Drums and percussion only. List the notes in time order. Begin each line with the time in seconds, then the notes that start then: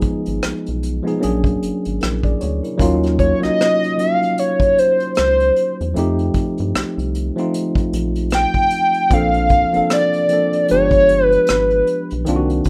0.01 kick, closed hi-hat
0.26 closed hi-hat
0.42 cross-stick, closed hi-hat
0.66 closed hi-hat
0.83 closed hi-hat
1.07 closed hi-hat
1.23 closed hi-hat
1.44 kick, closed hi-hat
1.63 closed hi-hat
1.85 closed hi-hat
2.01 cross-stick, closed hi-hat
2.23 kick, closed hi-hat
2.41 closed hi-hat
2.64 closed hi-hat
2.79 kick, closed hi-hat
3.03 cross-stick, closed hi-hat
3.19 kick, closed hi-hat
3.43 cross-stick, closed hi-hat
3.61 cross-stick, closed hi-hat
3.84 closed hi-hat
3.99 closed hi-hat
4.23 closed hi-hat
4.38 closed hi-hat
4.60 kick, closed hi-hat
4.78 closed hi-hat
5.00 closed hi-hat
5.15 cross-stick, closed hi-hat
5.40 closed hi-hat
5.56 closed hi-hat
5.81 closed hi-hat
5.96 closed hi-hat
6.19 closed hi-hat
6.34 kick, closed hi-hat
6.58 closed hi-hat
6.75 cross-stick, closed hi-hat
6.99 closed hi-hat
7.15 closed hi-hat
7.38 closed hi-hat
7.54 closed hi-hat
7.75 kick, closed hi-hat
7.93 closed hi-hat
8.16 closed hi-hat
8.30 cross-stick, closed hi-hat
8.54 kick, closed hi-hat
8.70 closed hi-hat
8.94 closed hi-hat
9.11 kick, closed hi-hat
9.34 closed hi-hat
9.49 kick, closed hi-hat
9.74 closed hi-hat
9.90 cross-stick, closed hi-hat
10.13 closed hi-hat
10.29 closed hi-hat
10.53 closed hi-hat
10.68 closed hi-hat
10.91 kick, closed hi-hat
11.09 closed hi-hat
11.32 closed hi-hat
11.47 cross-stick, closed hi-hat
11.71 closed hi-hat
11.87 closed hi-hat
12.11 closed hi-hat
12.26 closed hi-hat
12.50 closed hi-hat
12.64 kick, closed hi-hat